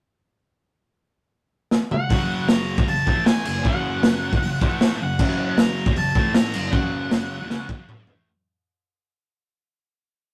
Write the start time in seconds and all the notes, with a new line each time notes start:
1.71 snare
1.91 F#5, mid tom
2.10 F#2 C#3 F#3, kick, open hi-hat
2.48 A#5, snare, open hi-hat
2.78 E2 B2, kick
2.87 F#2 C#3 A5, open hi-hat
3.06 A2 E3 A3, kick
3.26 G#5, snare, open hi-hat
3.45 F#2 C#3, crash
3.64 F#2 C#3 F#3 F#5, kick
4.03 snare, open hi-hat
4.32 E2 B2, kick
4.40 F#2 C#3, open hi-hat
4.60 A2 E3 A3, kick
4.81 snare, open hi-hat
5.01 F#2 C#3 F#5
5.19 F#2 C#3 F#3, kick, crash
5.58 A#5, snare, open hi-hat
5.86 E2 B2, kick
5.96 F#2 C#3 A5, open hi-hat
6.15 A2 E3 A3, kick
6.34 A#5, snare, open hi-hat
6.54 F#2 C#3, crash
6.72 F#2 C#3 F#3 F#5, kick
7.11 snare, open hi-hat
7.40 E2 B2
7.48 C#3 G#3 C#4, snare
7.68 E2 B2, kick
7.78 F#2 C#3
7.87 F#3 C#4, mid tom
7.96 F#2 C#3
8.07 A2 E3 A3, floor tom